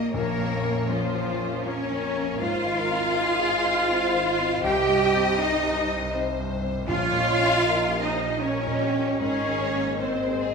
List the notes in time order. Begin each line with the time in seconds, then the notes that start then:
Already playing: A#1 A#2 A#3 D#4 G4 A#4 D#5
0.13 A#1 A#2 A#3 C#4 A#4 C#5
0.39 F2
0.64 A#3
0.88 F3 C#4 F4 C5
1.15 F4
1.40 C#4
1.66 A#3 C#4 A#4 C#5
1.91 F2
2.16 A#3
2.40 G#1 G#2 F4 C5 D#5 F5
2.66 D#3
2.78 A#4
2.89 C4
3.14 D#4 G#4
3.40 G#4
3.64 D#4
3.89 C4 C5
4.14 D#3
4.39 C4
4.64 C2 G4 D#5 G5
4.88 G2
5.14 C4
5.39 D#4 D#5
5.64 G4
5.88 D#4
6.13 C4 C5
6.38 G2
6.63 C4
6.88 A#1 A#2 C#4 F4 C#5 D#5 F5
7.12 A#2
7.38 C#4
7.63 D#4 A#4
7.88 G4
8.02 D#4 C5 D#5
8.14 D#4
8.41 C#4 A#4 C#5 D#5
8.67 A#2
8.81 G4
8.94 C#4
9.20 G#1 G#2 C#4 G#4 A#4 C#5 D#5
9.47 D#3
9.75 A#3
10.01 C4 D#4 A#4 C5 D#5
10.28 G#4
10.41 G#4